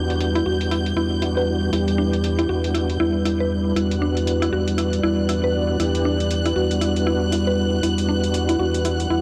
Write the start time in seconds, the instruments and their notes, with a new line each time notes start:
Already playing: tonewheel organ E2 G3 B3 D4 F#4, analog synth pad G3 E4 B4, violin section G6
0.10 closed hi-hat
0.20 closed hi-hat
0.35 synth arpeggio sound E4, closed hi-hat
0.45 tonewheel organ E2 G3 B3 D4 F#4, synth arpeggio sound F#4
0.61 closed hi-hat
0.71 synth arpeggio sound E4, closed hi-hat
0.86 closed hi-hat
0.96 tonewheel organ E2 G3 B3 D4 F#4, synth arpeggio sound E4
1.22 synth arpeggio sound E4, closed hi-hat
1.37 synth arpeggio sound B4
1.72 tonewheel organ E2 G3 B3 D4 G4, synth arpeggio sound E4, closed hi-hat
1.88 closed hi-hat
1.98 synth arpeggio sound D4
2.13 closed hi-hat
2.24 closed hi-hat
2.39 synth arpeggio sound E4, closed hi-hat
2.49 tonewheel organ E2 G3 B3 D4 F#4, synth arpeggio sound F#4
2.64 closed hi-hat
2.74 synth arpeggio sound E4, closed hi-hat
2.90 closed hi-hat
2.99 tonewheel organ E2 G3 B3 D4 E4, synth arpeggio sound E4
3.25 synth arpeggio sound E4, closed hi-hat
3.40 synth arpeggio sound B4
3.75 tonewheel organ E2 G3 B3 D4 F#4, synth arpeggio sound E4, analog synth pad D5, violin section F#6, closed hi-hat
3.91 closed hi-hat
4.02 synth arpeggio sound D4
4.17 closed hi-hat
4.27 closed hi-hat
4.42 synth arpeggio sound E4, closed hi-hat
4.52 tonewheel organ E2 G3 B3 D4 F#4, synth arpeggio sound F#4
4.68 closed hi-hat
4.78 synth arpeggio sound E4, closed hi-hat
4.93 closed hi-hat
5.03 tonewheel organ E2 G3 B3 D4 F#4, synth arpeggio sound E4
5.29 synth arpeggio sound E4, closed hi-hat
5.44 synth arpeggio sound B4
5.79 tonewheel organ E2 G3 B3 D4 G4, synth arpeggio sound E4, closed hi-hat
5.95 closed hi-hat
6.05 synth arpeggio sound D4
6.20 closed hi-hat
6.31 closed hi-hat
6.46 synth arpeggio sound E4, closed hi-hat
6.55 tonewheel organ E2 G3 B3 D4 F#4, synth arpeggio sound F#4
6.71 closed hi-hat
6.81 synth arpeggio sound E4, closed hi-hat
6.96 closed hi-hat
7.07 synth arpeggio sound E4
7.32 synth arpeggio sound E4, closed hi-hat
7.47 synth arpeggio sound B4
7.82 tonewheel organ E2 G3 B3 D4 F#4, synth arpeggio sound E4, analog synth pad F#5, closed hi-hat
7.98 closed hi-hat
8.09 synth arpeggio sound D4
8.24 closed hi-hat
8.34 closed hi-hat
8.49 synth arpeggio sound E4, closed hi-hat
8.59 tonewheel organ E2 G3 B3 D4 F#4, synth arpeggio sound F#4
8.74 closed hi-hat
8.85 synth arpeggio sound E4, closed hi-hat
9.00 closed hi-hat
9.09 tonewheel organ E2 G3 B3 D4 F#4, synth arpeggio sound E4